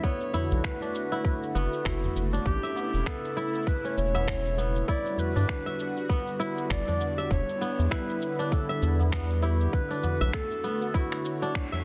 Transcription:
Already playing: D3 B3 D4 E4
0.03 A3 B3 F#4 C#5, kick, shaker
0.21 tabla tin, shaker
0.34 E4, tabla ge, shaker
0.51 B1, tabla na, shaker
0.64 B4, finger snap, kick, shaker
0.82 D4, shaker
0.95 shaker
1.11 E4, tabla na, tabla tin, shaker
1.25 kick, shaker
1.43 shaker
1.55 F#1 B3, shaker
1.73 shaker
1.85 F#1 E4 F#4, finger snap, kick, shaker
2.03 tabla ge, shaker
2.15 F#1, tabla tin, shaker
2.33 D4, tabla tin, shaker
2.46 A1 C#3 E4 G4, kick, shaker
2.63 E5, shaker
2.76 tabla na, shaker
2.94 E1, shaker
3.06 B3 A4, finger snap, kick, shaker
3.25 shaker
3.37 E4, shaker
3.54 tabla tin, shaker
3.67 B4, kick, shaker
3.85 C#4, shaker
3.98 E1 C#5, shaker
4.14 E5, tabla na, tabla ge, shaker
4.28 finger snap, kick, shaker
4.46 shaker
4.58 B3, shaker
4.76 shaker
4.88 D3 G3 E4 F#4 D5, kick, shaker
5.06 shaker
5.17 B4, tabla ge, shaker
5.36 G2 D4, shaker
5.49 finger snap, kick, shaker
5.66 E5, shaker
5.79 shaker
5.97 tabla tin, shaker
6.09 B3, kick, shaker
6.27 shaker
6.40 E4, shaker
6.58 shaker
6.70 G1 D5, finger snap, kick, shaker
6.88 D4, tabla ge, shaker
7.01 tabla tin, shaker
7.18 E5, shaker
7.30 E1 B3 E4 C#5, kick, shaker
7.49 shaker
7.61 B3, tabla na, shaker
7.79 E2, shaker
7.91 E4 B4, finger snap, kick, shaker
8.09 shaker
8.22 shaker
8.39 D4, tabla tin, shaker
8.52 A4, kick, shaker
8.69 E5, shaker
8.82 E2, shaker
8.99 tabla na, tabla ge, shaker
9.12 B3, finger snap, kick, shaker
9.30 shaker
9.43 E4 G4, shaker
9.51 F#4
9.60 G4, shaker
9.73 A3 F#4 B4, kick, shaker
9.90 D4, tabla tin, shaker
10.03 tabla na, tabla ge, shaker
10.21 B1 E5, shaker
10.33 A4, finger snap, kick, shaker
10.51 shaker
10.64 B3, shaker
10.81 tabla tin, shaker
10.94 E4 F#4 C#5, kick, shaker
11.12 finger snap, shaker
11.25 shaker
11.42 D4, shaker
11.55 finger snap, kick, shaker
11.72 E5, tabla ge, shaker

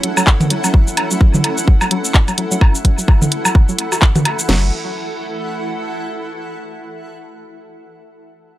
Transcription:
Already playing: A3 C#4 E4 A4 F#5
0.03 F#3, closed hi-hat
0.17 F#3, cabasa, low woodblock
0.27 kick, clap
0.40 closed hi-hat, mid tom, cabasa
0.50 F#3, closed hi-hat
0.64 F#3, cabasa, low woodblock
0.74 F#3, kick
0.87 cabasa
0.97 closed hi-hat, low woodblock
1.11 F#3, cabasa
1.21 F#3, kick
1.34 F#3, mid tom, cabasa
1.44 closed hi-hat, low woodblock
1.58 cabasa
1.68 F#3, kick
1.81 F#3, cabasa, low woodblock
1.91 F#3, closed hi-hat
2.05 cabasa
2.14 kick, clap
2.28 F#3, closed hi-hat, cabasa, low woodblock
2.38 F#3, closed hi-hat
2.51 F#3, cabasa
2.61 kick, low woodblock
2.75 cabasa
2.85 F#3, kick, closed hi-hat
2.98 F#3, cabasa
3.08 F#3, kick, low woodblock
3.22 mid tom, cabasa
3.32 closed hi-hat
3.45 F#3, cabasa, low woodblock
3.55 F#3, kick
3.69 F#3, cabasa
3.79 closed hi-hat
3.92 F#4, cabasa, low woodblock
4.02 E3, kick, clap
4.15 F#4, closed hi-hat, mid tom, cabasa
4.25 closed hi-hat, low woodblock
4.39 cabasa
4.49 F#1 F#3 E4, snare, crash
4.57 A4
4.64 F#5

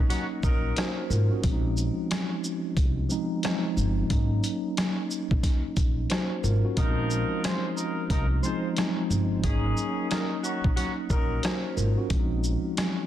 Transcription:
Already playing: F#3 A#3 C#4 D#4
0.10 D#3 C#4 F#4, snare, closed hi-hat
0.43 A#1 F#3 D#4 A#4, kick, shaker
0.76 F#4 C5, cross-stick, snare, closed hi-hat
1.10 G#1 F4 A#4, shaker
1.31 C#4 F#4
1.43 A#1 F3 G#3 C4 D4, kick, closed hi-hat
1.52 D#4
1.77 shaker
2.11 cross-stick, snare, closed hi-hat
2.44 shaker
2.77 C2, kick, closed hi-hat
3.09 F3 G#3 C4 D#4, shaker
3.43 F3 G#3 C4 D#4, cross-stick, snare, closed hi-hat
3.77 G1, shaker
4.09 G#1 F#3 A#3 C#4 D#4, kick, closed hi-hat
4.44 closed hi-hat, shaker
4.77 cross-stick, snare, closed hi-hat
5.11 shaker
5.31 A#1, kick
5.43 kick, snare, closed hi-hat
5.77 A#1, kick, closed hi-hat, shaker
6.10 F#4 C5, cross-stick, snare, closed hi-hat
6.43 G#1 F4 A#4, shaker
6.64 C#4 F#4
6.77 A#1 F3 G#3 C4 D4 D#4 A#4, kick, closed hi-hat
6.86 D#4
7.10 shaker
7.44 G#3 F4 C5, cross-stick, snare, closed hi-hat
7.77 F3 D#4 A#4, shaker
8.10 C2 F3 D#4 A#4, kick, closed hi-hat
8.42 F3 G#3 C4 D#4 F4 C5, shaker
8.77 F3 G#3 C4 D#4, cross-stick, snare, closed hi-hat
9.10 G1, shaker
9.43 G#1 D#3 F#3 A#3 C#4 D#4 G#4, kick, closed hi-hat
9.77 shaker
10.10 F#3 D#4 A#4, cross-stick, snare, closed hi-hat
10.44 D#3 C#4 F#4, shaker
10.64 A#1, kick
10.77 D#3 C#4 F#4, snare, closed hi-hat
11.10 A#1 F#3 D#4 A#4, kick, shaker
11.43 F#4 C5, cross-stick, snare, closed hi-hat
11.77 G#1 F4 A#4, shaker
11.98 C#4 F#4
12.10 A#1 F3 G#3 C4 D4, kick, closed hi-hat
12.19 D#4
12.44 shaker
12.77 cross-stick, snare, closed hi-hat

